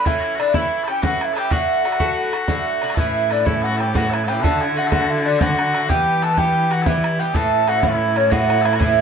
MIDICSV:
0, 0, Header, 1, 6, 480
1, 0, Start_track
1, 0, Tempo, 323625
1, 92, Time_signature, 9, 3, 24, 8
1, 13368, End_track
2, 0, Start_track
2, 0, Title_t, "Flute"
2, 0, Program_c, 0, 73
2, 102, Note_on_c, 0, 76, 93
2, 584, Note_on_c, 0, 74, 91
2, 606, Note_off_c, 0, 76, 0
2, 826, Note_on_c, 0, 76, 104
2, 849, Note_off_c, 0, 74, 0
2, 1314, Note_off_c, 0, 76, 0
2, 1337, Note_on_c, 0, 79, 90
2, 1533, Note_off_c, 0, 79, 0
2, 1562, Note_on_c, 0, 78, 93
2, 1844, Note_on_c, 0, 76, 85
2, 1867, Note_off_c, 0, 78, 0
2, 2043, Note_off_c, 0, 76, 0
2, 2052, Note_on_c, 0, 79, 90
2, 2251, Note_off_c, 0, 79, 0
2, 2281, Note_on_c, 0, 78, 82
2, 3918, Note_off_c, 0, 78, 0
2, 4430, Note_on_c, 0, 76, 86
2, 4926, Note_on_c, 0, 74, 76
2, 4948, Note_off_c, 0, 76, 0
2, 5140, Note_on_c, 0, 76, 84
2, 5162, Note_off_c, 0, 74, 0
2, 5393, Note_on_c, 0, 78, 82
2, 5415, Note_off_c, 0, 76, 0
2, 5631, Note_on_c, 0, 79, 91
2, 5654, Note_off_c, 0, 78, 0
2, 5844, Note_off_c, 0, 79, 0
2, 5852, Note_on_c, 0, 78, 83
2, 6125, Note_on_c, 0, 76, 83
2, 6147, Note_off_c, 0, 78, 0
2, 6347, Note_on_c, 0, 79, 77
2, 6369, Note_off_c, 0, 76, 0
2, 6561, Note_on_c, 0, 81, 93
2, 6583, Note_off_c, 0, 79, 0
2, 6858, Note_on_c, 0, 76, 80
2, 6881, Note_off_c, 0, 81, 0
2, 7092, Note_on_c, 0, 78, 92
2, 7114, Note_off_c, 0, 76, 0
2, 7308, Note_off_c, 0, 78, 0
2, 7320, Note_on_c, 0, 78, 83
2, 7570, Note_on_c, 0, 76, 85
2, 7592, Note_off_c, 0, 78, 0
2, 7801, Note_on_c, 0, 74, 81
2, 7823, Note_off_c, 0, 76, 0
2, 8017, Note_on_c, 0, 78, 99
2, 8039, Note_off_c, 0, 74, 0
2, 8730, Note_off_c, 0, 78, 0
2, 8739, Note_on_c, 0, 79, 94
2, 9247, Note_on_c, 0, 81, 100
2, 9269, Note_off_c, 0, 79, 0
2, 9472, Note_on_c, 0, 79, 92
2, 9495, Note_off_c, 0, 81, 0
2, 9984, Note_on_c, 0, 78, 87
2, 10006, Note_off_c, 0, 79, 0
2, 10186, Note_on_c, 0, 76, 94
2, 10208, Note_off_c, 0, 78, 0
2, 10673, Note_on_c, 0, 79, 83
2, 10696, Note_off_c, 0, 76, 0
2, 10889, Note_on_c, 0, 81, 98
2, 10911, Note_off_c, 0, 79, 0
2, 11398, Note_on_c, 0, 78, 104
2, 11420, Note_off_c, 0, 81, 0
2, 11616, Note_off_c, 0, 78, 0
2, 11616, Note_on_c, 0, 78, 86
2, 11687, Note_on_c, 0, 76, 93
2, 11702, Note_off_c, 0, 78, 0
2, 12119, Note_on_c, 0, 73, 86
2, 12141, Note_off_c, 0, 76, 0
2, 12340, Note_on_c, 0, 78, 81
2, 12362, Note_off_c, 0, 73, 0
2, 12836, Note_on_c, 0, 76, 69
2, 12858, Note_off_c, 0, 78, 0
2, 13050, Note_off_c, 0, 76, 0
2, 13059, Note_on_c, 0, 76, 93
2, 13368, Note_off_c, 0, 76, 0
2, 13368, End_track
3, 0, Start_track
3, 0, Title_t, "Bagpipes"
3, 0, Program_c, 1, 109
3, 84, Note_on_c, 1, 64, 78
3, 298, Note_off_c, 1, 64, 0
3, 298, Note_on_c, 1, 66, 81
3, 351, Note_off_c, 1, 66, 0
3, 351, Note_on_c, 1, 64, 81
3, 518, Note_off_c, 1, 64, 0
3, 518, Note_on_c, 1, 66, 68
3, 582, Note_off_c, 1, 66, 0
3, 582, Note_on_c, 1, 62, 68
3, 800, Note_off_c, 1, 62, 0
3, 800, Note_on_c, 1, 64, 71
3, 1243, Note_off_c, 1, 64, 0
3, 1243, Note_on_c, 1, 69, 72
3, 1296, Note_off_c, 1, 69, 0
3, 1296, Note_on_c, 1, 67, 72
3, 1527, Note_off_c, 1, 67, 0
3, 1527, Note_on_c, 1, 66, 72
3, 1804, Note_off_c, 1, 66, 0
3, 1804, Note_on_c, 1, 64, 60
3, 1972, Note_off_c, 1, 64, 0
3, 1972, Note_on_c, 1, 69, 89
3, 2036, Note_off_c, 1, 69, 0
3, 2036, Note_on_c, 1, 67, 89
3, 2243, Note_off_c, 1, 67, 0
3, 2243, Note_on_c, 1, 66, 76
3, 4370, Note_off_c, 1, 66, 0
3, 4370, Note_on_c, 1, 69, 69
3, 4425, Note_off_c, 1, 69, 0
3, 4425, Note_on_c, 1, 64, 69
3, 4907, Note_off_c, 1, 64, 0
3, 4907, Note_on_c, 1, 62, 62
3, 5132, Note_off_c, 1, 62, 0
3, 5132, Note_on_c, 1, 64, 65
3, 5369, Note_off_c, 1, 64, 0
3, 5369, Note_on_c, 1, 69, 77
3, 5419, Note_off_c, 1, 69, 0
3, 5419, Note_on_c, 1, 66, 77
3, 5585, Note_off_c, 1, 66, 0
3, 5585, Note_on_c, 1, 69, 51
3, 5633, Note_off_c, 1, 69, 0
3, 5633, Note_on_c, 1, 67, 68
3, 5874, Note_off_c, 1, 67, 0
3, 5874, Note_on_c, 1, 66, 76
3, 6079, Note_off_c, 1, 66, 0
3, 6079, Note_on_c, 1, 69, 57
3, 6134, Note_on_c, 1, 64, 57
3, 6135, Note_off_c, 1, 69, 0
3, 6290, Note_off_c, 1, 64, 0
3, 6290, Note_on_c, 1, 69, 70
3, 6352, Note_off_c, 1, 69, 0
3, 6352, Note_on_c, 1, 67, 70
3, 6530, Note_off_c, 1, 67, 0
3, 6530, Note_on_c, 1, 71, 72
3, 6581, Note_off_c, 1, 71, 0
3, 6581, Note_on_c, 1, 69, 72
3, 6845, Note_off_c, 1, 69, 0
3, 6845, Note_on_c, 1, 64, 77
3, 7064, Note_off_c, 1, 64, 0
3, 7064, Note_on_c, 1, 66, 72
3, 7221, Note_off_c, 1, 66, 0
3, 7221, Note_on_c, 1, 69, 70
3, 7284, Note_off_c, 1, 69, 0
3, 7284, Note_on_c, 1, 66, 70
3, 7587, Note_off_c, 1, 66, 0
3, 7587, Note_on_c, 1, 64, 75
3, 7815, Note_off_c, 1, 64, 0
3, 7815, Note_on_c, 1, 62, 62
3, 7987, Note_off_c, 1, 62, 0
3, 7987, Note_on_c, 1, 69, 73
3, 8039, Note_off_c, 1, 69, 0
3, 8039, Note_on_c, 1, 66, 73
3, 8741, Note_off_c, 1, 66, 0
3, 8741, Note_on_c, 1, 67, 80
3, 9240, Note_off_c, 1, 67, 0
3, 9240, Note_on_c, 1, 69, 72
3, 9392, Note_off_c, 1, 69, 0
3, 9392, Note_on_c, 1, 71, 66
3, 9452, Note_off_c, 1, 71, 0
3, 9452, Note_on_c, 1, 67, 66
3, 9951, Note_off_c, 1, 67, 0
3, 9951, Note_on_c, 1, 66, 74
3, 10116, Note_off_c, 1, 66, 0
3, 10116, Note_on_c, 1, 69, 64
3, 10170, Note_off_c, 1, 69, 0
3, 10170, Note_on_c, 1, 64, 64
3, 10673, Note_off_c, 1, 64, 0
3, 10673, Note_on_c, 1, 67, 77
3, 10893, Note_off_c, 1, 67, 0
3, 10893, Note_on_c, 1, 69, 84
3, 11402, Note_off_c, 1, 69, 0
3, 11402, Note_on_c, 1, 66, 65
3, 11574, Note_off_c, 1, 66, 0
3, 11574, Note_on_c, 1, 69, 69
3, 11622, Note_off_c, 1, 69, 0
3, 11622, Note_on_c, 1, 64, 69
3, 12118, Note_off_c, 1, 64, 0
3, 12118, Note_on_c, 1, 61, 74
3, 12319, Note_off_c, 1, 61, 0
3, 12319, Note_on_c, 1, 66, 77
3, 12776, Note_off_c, 1, 66, 0
3, 12776, Note_on_c, 1, 69, 84
3, 12824, Note_off_c, 1, 69, 0
3, 12824, Note_on_c, 1, 64, 84
3, 12979, Note_off_c, 1, 64, 0
3, 12979, Note_on_c, 1, 66, 79
3, 13043, Note_off_c, 1, 66, 0
3, 13043, Note_on_c, 1, 64, 79
3, 13368, Note_off_c, 1, 64, 0
3, 13368, End_track
4, 0, Start_track
4, 0, Title_t, "Bouzouki"
4, 0, Program_c, 2, 25
4, 85, Note_on_c, 2, 45, 74
4, 90, Note_on_c, 2, 52, 83
4, 97, Note_on_c, 2, 61, 87
4, 100, Note_on_c, 2, 64, 96
4, 547, Note_off_c, 2, 45, 0
4, 565, Note_off_c, 2, 52, 0
4, 565, Note_on_c, 2, 45, 64
4, 568, Note_off_c, 2, 61, 0
4, 578, Note_off_c, 2, 64, 0
4, 582, Note_on_c, 2, 52, 58
4, 586, Note_on_c, 2, 61, 61
4, 596, Note_on_c, 2, 64, 69
4, 790, Note_off_c, 2, 64, 0
4, 794, Note_off_c, 2, 61, 0
4, 802, Note_off_c, 2, 45, 0
4, 802, Note_off_c, 2, 52, 0
4, 808, Note_on_c, 2, 64, 75
4, 812, Note_on_c, 2, 61, 59
4, 820, Note_on_c, 2, 52, 67
4, 822, Note_on_c, 2, 45, 53
4, 1273, Note_off_c, 2, 64, 0
4, 1290, Note_off_c, 2, 61, 0
4, 1290, Note_on_c, 2, 64, 53
4, 1304, Note_off_c, 2, 52, 0
4, 1308, Note_on_c, 2, 61, 49
4, 1312, Note_off_c, 2, 45, 0
4, 1322, Note_on_c, 2, 52, 39
4, 1498, Note_off_c, 2, 52, 0
4, 1510, Note_off_c, 2, 64, 0
4, 1511, Note_off_c, 2, 61, 0
4, 1513, Note_on_c, 2, 45, 61
4, 1515, Note_on_c, 2, 52, 63
4, 1528, Note_on_c, 2, 64, 73
4, 1529, Note_on_c, 2, 61, 62
4, 1988, Note_off_c, 2, 45, 0
4, 1999, Note_off_c, 2, 52, 0
4, 2006, Note_on_c, 2, 45, 58
4, 2015, Note_off_c, 2, 61, 0
4, 2017, Note_on_c, 2, 52, 65
4, 2022, Note_off_c, 2, 64, 0
4, 2033, Note_on_c, 2, 61, 59
4, 2040, Note_on_c, 2, 64, 60
4, 2212, Note_off_c, 2, 45, 0
4, 2230, Note_on_c, 2, 45, 83
4, 2236, Note_off_c, 2, 52, 0
4, 2240, Note_off_c, 2, 61, 0
4, 2242, Note_on_c, 2, 50, 82
4, 2246, Note_on_c, 2, 57, 87
4, 2248, Note_off_c, 2, 64, 0
4, 2254, Note_on_c, 2, 66, 89
4, 2711, Note_off_c, 2, 45, 0
4, 2721, Note_off_c, 2, 50, 0
4, 2729, Note_on_c, 2, 45, 56
4, 2738, Note_off_c, 2, 66, 0
4, 2739, Note_on_c, 2, 50, 58
4, 2741, Note_off_c, 2, 57, 0
4, 2747, Note_on_c, 2, 57, 70
4, 2755, Note_on_c, 2, 66, 60
4, 2943, Note_off_c, 2, 66, 0
4, 2949, Note_off_c, 2, 57, 0
4, 2956, Note_off_c, 2, 50, 0
4, 2961, Note_on_c, 2, 66, 74
4, 2964, Note_off_c, 2, 45, 0
4, 2967, Note_on_c, 2, 57, 73
4, 2974, Note_on_c, 2, 50, 70
4, 2984, Note_on_c, 2, 45, 71
4, 3440, Note_off_c, 2, 66, 0
4, 3458, Note_on_c, 2, 66, 59
4, 3465, Note_off_c, 2, 57, 0
4, 3469, Note_off_c, 2, 50, 0
4, 3471, Note_on_c, 2, 57, 55
4, 3474, Note_off_c, 2, 45, 0
4, 3488, Note_on_c, 2, 50, 46
4, 3670, Note_off_c, 2, 50, 0
4, 3677, Note_off_c, 2, 57, 0
4, 3685, Note_off_c, 2, 66, 0
4, 3685, Note_on_c, 2, 45, 77
4, 3687, Note_on_c, 2, 50, 71
4, 3695, Note_on_c, 2, 57, 81
4, 3703, Note_on_c, 2, 66, 64
4, 4157, Note_off_c, 2, 45, 0
4, 4166, Note_off_c, 2, 50, 0
4, 4175, Note_on_c, 2, 45, 60
4, 4184, Note_on_c, 2, 50, 65
4, 4188, Note_off_c, 2, 57, 0
4, 4189, Note_off_c, 2, 66, 0
4, 4194, Note_on_c, 2, 57, 69
4, 4207, Note_on_c, 2, 66, 77
4, 4388, Note_off_c, 2, 45, 0
4, 4406, Note_on_c, 2, 45, 68
4, 4410, Note_off_c, 2, 50, 0
4, 4416, Note_on_c, 2, 52, 82
4, 4418, Note_off_c, 2, 57, 0
4, 4422, Note_off_c, 2, 66, 0
4, 4426, Note_on_c, 2, 61, 79
4, 4428, Note_on_c, 2, 64, 83
4, 4877, Note_off_c, 2, 45, 0
4, 4893, Note_off_c, 2, 52, 0
4, 4894, Note_on_c, 2, 45, 58
4, 4900, Note_off_c, 2, 61, 0
4, 4904, Note_off_c, 2, 64, 0
4, 4911, Note_on_c, 2, 52, 60
4, 4918, Note_on_c, 2, 61, 62
4, 4922, Note_on_c, 2, 64, 60
4, 5099, Note_off_c, 2, 64, 0
4, 5111, Note_off_c, 2, 61, 0
4, 5113, Note_off_c, 2, 52, 0
4, 5117, Note_on_c, 2, 64, 60
4, 5118, Note_off_c, 2, 45, 0
4, 5129, Note_on_c, 2, 61, 65
4, 5131, Note_on_c, 2, 52, 53
4, 5136, Note_on_c, 2, 45, 51
4, 5597, Note_off_c, 2, 64, 0
4, 5615, Note_on_c, 2, 64, 44
4, 5619, Note_off_c, 2, 61, 0
4, 5629, Note_off_c, 2, 52, 0
4, 5631, Note_off_c, 2, 45, 0
4, 5637, Note_on_c, 2, 61, 50
4, 5649, Note_on_c, 2, 52, 41
4, 5838, Note_off_c, 2, 52, 0
4, 5843, Note_on_c, 2, 45, 59
4, 5845, Note_off_c, 2, 61, 0
4, 5849, Note_off_c, 2, 64, 0
4, 5856, Note_on_c, 2, 52, 68
4, 5863, Note_on_c, 2, 61, 73
4, 5867, Note_on_c, 2, 64, 65
4, 6327, Note_off_c, 2, 45, 0
4, 6335, Note_off_c, 2, 52, 0
4, 6345, Note_on_c, 2, 45, 61
4, 6347, Note_off_c, 2, 61, 0
4, 6353, Note_on_c, 2, 52, 65
4, 6357, Note_off_c, 2, 64, 0
4, 6365, Note_on_c, 2, 61, 59
4, 6373, Note_on_c, 2, 64, 67
4, 6553, Note_off_c, 2, 45, 0
4, 6571, Note_on_c, 2, 45, 76
4, 6577, Note_off_c, 2, 52, 0
4, 6583, Note_off_c, 2, 61, 0
4, 6583, Note_on_c, 2, 50, 84
4, 6587, Note_off_c, 2, 64, 0
4, 6589, Note_on_c, 2, 57, 84
4, 6593, Note_on_c, 2, 66, 86
4, 7044, Note_off_c, 2, 45, 0
4, 7058, Note_off_c, 2, 50, 0
4, 7062, Note_on_c, 2, 45, 58
4, 7072, Note_off_c, 2, 57, 0
4, 7076, Note_on_c, 2, 50, 68
4, 7080, Note_off_c, 2, 66, 0
4, 7089, Note_on_c, 2, 57, 54
4, 7095, Note_on_c, 2, 66, 68
4, 7270, Note_off_c, 2, 66, 0
4, 7279, Note_off_c, 2, 57, 0
4, 7288, Note_on_c, 2, 66, 72
4, 7290, Note_off_c, 2, 50, 0
4, 7293, Note_off_c, 2, 45, 0
4, 7297, Note_on_c, 2, 57, 64
4, 7308, Note_on_c, 2, 50, 64
4, 7311, Note_on_c, 2, 45, 55
4, 7764, Note_off_c, 2, 66, 0
4, 7782, Note_on_c, 2, 66, 53
4, 7785, Note_off_c, 2, 57, 0
4, 7798, Note_off_c, 2, 50, 0
4, 7799, Note_off_c, 2, 45, 0
4, 7802, Note_on_c, 2, 57, 48
4, 7814, Note_on_c, 2, 50, 45
4, 8005, Note_off_c, 2, 50, 0
4, 8007, Note_off_c, 2, 57, 0
4, 8011, Note_on_c, 2, 45, 64
4, 8013, Note_off_c, 2, 66, 0
4, 8023, Note_on_c, 2, 50, 61
4, 8025, Note_on_c, 2, 57, 55
4, 8032, Note_on_c, 2, 66, 71
4, 8480, Note_off_c, 2, 45, 0
4, 8492, Note_off_c, 2, 50, 0
4, 8497, Note_on_c, 2, 45, 57
4, 8498, Note_off_c, 2, 57, 0
4, 8510, Note_on_c, 2, 50, 60
4, 8513, Note_off_c, 2, 66, 0
4, 8515, Note_on_c, 2, 57, 66
4, 8531, Note_on_c, 2, 66, 68
4, 8722, Note_off_c, 2, 45, 0
4, 8728, Note_on_c, 2, 43, 69
4, 8729, Note_off_c, 2, 50, 0
4, 8734, Note_off_c, 2, 57, 0
4, 8735, Note_on_c, 2, 52, 86
4, 8739, Note_off_c, 2, 66, 0
4, 8740, Note_on_c, 2, 59, 79
4, 8745, Note_on_c, 2, 67, 78
4, 9208, Note_off_c, 2, 43, 0
4, 9226, Note_off_c, 2, 59, 0
4, 9226, Note_on_c, 2, 43, 64
4, 9231, Note_off_c, 2, 52, 0
4, 9236, Note_off_c, 2, 67, 0
4, 9237, Note_on_c, 2, 52, 62
4, 9244, Note_on_c, 2, 59, 62
4, 9252, Note_on_c, 2, 67, 61
4, 9438, Note_off_c, 2, 67, 0
4, 9452, Note_off_c, 2, 59, 0
4, 9454, Note_off_c, 2, 52, 0
4, 9455, Note_off_c, 2, 43, 0
4, 9456, Note_on_c, 2, 67, 70
4, 9470, Note_on_c, 2, 59, 68
4, 9472, Note_on_c, 2, 52, 61
4, 9478, Note_on_c, 2, 43, 53
4, 9929, Note_off_c, 2, 67, 0
4, 9946, Note_on_c, 2, 67, 49
4, 9948, Note_off_c, 2, 59, 0
4, 9962, Note_off_c, 2, 43, 0
4, 9966, Note_on_c, 2, 59, 51
4, 9974, Note_off_c, 2, 52, 0
4, 9980, Note_on_c, 2, 52, 42
4, 10169, Note_off_c, 2, 52, 0
4, 10175, Note_off_c, 2, 67, 0
4, 10181, Note_off_c, 2, 59, 0
4, 10184, Note_on_c, 2, 43, 67
4, 10187, Note_on_c, 2, 52, 69
4, 10199, Note_on_c, 2, 59, 77
4, 10206, Note_on_c, 2, 67, 67
4, 10651, Note_off_c, 2, 43, 0
4, 10668, Note_off_c, 2, 59, 0
4, 10669, Note_on_c, 2, 43, 62
4, 10670, Note_off_c, 2, 52, 0
4, 10676, Note_on_c, 2, 52, 62
4, 10679, Note_off_c, 2, 67, 0
4, 10686, Note_on_c, 2, 59, 61
4, 10696, Note_on_c, 2, 67, 67
4, 10881, Note_off_c, 2, 52, 0
4, 10883, Note_off_c, 2, 43, 0
4, 10889, Note_on_c, 2, 45, 78
4, 10899, Note_on_c, 2, 52, 78
4, 10903, Note_off_c, 2, 59, 0
4, 10907, Note_off_c, 2, 67, 0
4, 10909, Note_on_c, 2, 61, 79
4, 10913, Note_on_c, 2, 64, 83
4, 11366, Note_off_c, 2, 45, 0
4, 11378, Note_off_c, 2, 52, 0
4, 11383, Note_on_c, 2, 45, 64
4, 11386, Note_off_c, 2, 61, 0
4, 11394, Note_off_c, 2, 64, 0
4, 11396, Note_on_c, 2, 52, 58
4, 11404, Note_on_c, 2, 61, 63
4, 11412, Note_on_c, 2, 64, 59
4, 11589, Note_off_c, 2, 64, 0
4, 11597, Note_off_c, 2, 61, 0
4, 11603, Note_off_c, 2, 52, 0
4, 11606, Note_on_c, 2, 64, 66
4, 11608, Note_off_c, 2, 45, 0
4, 11615, Note_on_c, 2, 61, 62
4, 11621, Note_on_c, 2, 52, 55
4, 11625, Note_on_c, 2, 45, 50
4, 12080, Note_off_c, 2, 64, 0
4, 12089, Note_off_c, 2, 61, 0
4, 12098, Note_on_c, 2, 64, 54
4, 12107, Note_on_c, 2, 61, 51
4, 12109, Note_off_c, 2, 52, 0
4, 12114, Note_off_c, 2, 45, 0
4, 12127, Note_on_c, 2, 52, 41
4, 12311, Note_off_c, 2, 52, 0
4, 12314, Note_off_c, 2, 61, 0
4, 12316, Note_on_c, 2, 45, 62
4, 12322, Note_off_c, 2, 64, 0
4, 12329, Note_on_c, 2, 52, 74
4, 12332, Note_on_c, 2, 61, 67
4, 12340, Note_on_c, 2, 64, 67
4, 12794, Note_off_c, 2, 45, 0
4, 12807, Note_off_c, 2, 52, 0
4, 12812, Note_on_c, 2, 45, 54
4, 12815, Note_off_c, 2, 61, 0
4, 12822, Note_off_c, 2, 64, 0
4, 12825, Note_on_c, 2, 52, 59
4, 12833, Note_on_c, 2, 61, 55
4, 12840, Note_on_c, 2, 64, 53
4, 13016, Note_off_c, 2, 45, 0
4, 13025, Note_off_c, 2, 52, 0
4, 13026, Note_off_c, 2, 61, 0
4, 13033, Note_on_c, 2, 45, 80
4, 13036, Note_off_c, 2, 64, 0
4, 13043, Note_on_c, 2, 52, 81
4, 13044, Note_on_c, 2, 61, 83
4, 13053, Note_on_c, 2, 64, 95
4, 13368, Note_off_c, 2, 45, 0
4, 13368, Note_off_c, 2, 52, 0
4, 13368, Note_off_c, 2, 61, 0
4, 13368, Note_off_c, 2, 64, 0
4, 13368, End_track
5, 0, Start_track
5, 0, Title_t, "Cello"
5, 0, Program_c, 3, 42
5, 4405, Note_on_c, 3, 45, 82
5, 6578, Note_on_c, 3, 50, 88
5, 6600, Note_off_c, 3, 45, 0
5, 8735, Note_on_c, 3, 52, 81
5, 8757, Note_off_c, 3, 50, 0
5, 10900, Note_on_c, 3, 45, 82
5, 10923, Note_off_c, 3, 52, 0
5, 13368, Note_off_c, 3, 45, 0
5, 13368, End_track
6, 0, Start_track
6, 0, Title_t, "Bodhran"
6, 88, Note_on_c, 9, 64, 72
6, 236, Note_off_c, 9, 64, 0
6, 589, Note_on_c, 9, 64, 61
6, 737, Note_off_c, 9, 64, 0
6, 804, Note_on_c, 9, 64, 81
6, 952, Note_off_c, 9, 64, 0
6, 1302, Note_on_c, 9, 64, 56
6, 1450, Note_off_c, 9, 64, 0
6, 1530, Note_on_c, 9, 64, 89
6, 1679, Note_off_c, 9, 64, 0
6, 1797, Note_on_c, 9, 64, 68
6, 1946, Note_off_c, 9, 64, 0
6, 2025, Note_on_c, 9, 64, 56
6, 2173, Note_off_c, 9, 64, 0
6, 2242, Note_on_c, 9, 64, 73
6, 2390, Note_off_c, 9, 64, 0
6, 2747, Note_on_c, 9, 64, 54
6, 2854, Note_off_c, 9, 64, 0
6, 2854, Note_on_c, 9, 64, 55
6, 2965, Note_off_c, 9, 64, 0
6, 2965, Note_on_c, 9, 64, 76
6, 3114, Note_off_c, 9, 64, 0
6, 3458, Note_on_c, 9, 64, 61
6, 3606, Note_off_c, 9, 64, 0
6, 3680, Note_on_c, 9, 64, 86
6, 3828, Note_off_c, 9, 64, 0
6, 4178, Note_on_c, 9, 64, 52
6, 4300, Note_off_c, 9, 64, 0
6, 4300, Note_on_c, 9, 64, 56
6, 4406, Note_off_c, 9, 64, 0
6, 4406, Note_on_c, 9, 64, 72
6, 4554, Note_off_c, 9, 64, 0
6, 4905, Note_on_c, 9, 64, 51
6, 5053, Note_off_c, 9, 64, 0
6, 5140, Note_on_c, 9, 64, 83
6, 5288, Note_off_c, 9, 64, 0
6, 5639, Note_on_c, 9, 64, 55
6, 5788, Note_off_c, 9, 64, 0
6, 5861, Note_on_c, 9, 64, 90
6, 6009, Note_off_c, 9, 64, 0
6, 6133, Note_on_c, 9, 64, 63
6, 6282, Note_off_c, 9, 64, 0
6, 6351, Note_on_c, 9, 64, 56
6, 6499, Note_off_c, 9, 64, 0
6, 6589, Note_on_c, 9, 64, 78
6, 6737, Note_off_c, 9, 64, 0
6, 7298, Note_on_c, 9, 64, 87
6, 7446, Note_off_c, 9, 64, 0
6, 8022, Note_on_c, 9, 64, 91
6, 8171, Note_off_c, 9, 64, 0
6, 8287, Note_on_c, 9, 64, 65
6, 8435, Note_off_c, 9, 64, 0
6, 8517, Note_on_c, 9, 64, 55
6, 8665, Note_off_c, 9, 64, 0
6, 8746, Note_on_c, 9, 64, 68
6, 8894, Note_off_c, 9, 64, 0
6, 9231, Note_on_c, 9, 64, 47
6, 9380, Note_off_c, 9, 64, 0
6, 9456, Note_on_c, 9, 64, 72
6, 9604, Note_off_c, 9, 64, 0
6, 9954, Note_on_c, 9, 64, 47
6, 10102, Note_off_c, 9, 64, 0
6, 10179, Note_on_c, 9, 64, 90
6, 10327, Note_off_c, 9, 64, 0
6, 10443, Note_on_c, 9, 64, 68
6, 10591, Note_off_c, 9, 64, 0
6, 10893, Note_on_c, 9, 64, 66
6, 11042, Note_off_c, 9, 64, 0
6, 11385, Note_on_c, 9, 64, 55
6, 11533, Note_off_c, 9, 64, 0
6, 11613, Note_on_c, 9, 64, 77
6, 11761, Note_off_c, 9, 64, 0
6, 12104, Note_on_c, 9, 64, 56
6, 12253, Note_off_c, 9, 64, 0
6, 12340, Note_on_c, 9, 64, 83
6, 12488, Note_off_c, 9, 64, 0
6, 12608, Note_on_c, 9, 64, 69
6, 12756, Note_off_c, 9, 64, 0
6, 12836, Note_on_c, 9, 64, 61
6, 12950, Note_off_c, 9, 64, 0
6, 12950, Note_on_c, 9, 64, 64
6, 13061, Note_off_c, 9, 64, 0
6, 13061, Note_on_c, 9, 64, 75
6, 13209, Note_off_c, 9, 64, 0
6, 13368, End_track
0, 0, End_of_file